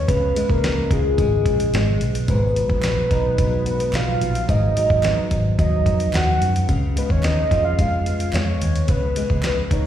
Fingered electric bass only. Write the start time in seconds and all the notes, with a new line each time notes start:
0.08 C#2
0.49 C#2
0.90 C#2
1.18 G#1
1.45 A#1
1.73 G#1
2.01 B1
2.28 G#1
2.69 A#1
3.10 B1
3.93 B1
4.21 A#1
4.49 G#1
4.90 G#1
5.31 G#1
5.59 D#2
5.86 F2
6.13 D#2
6.41 F#2
6.68 C#2
7.10 D#2
7.51 F2
8.33 F2
8.62 D#2
8.89 C#2
9.29 C#2
9.71 C#2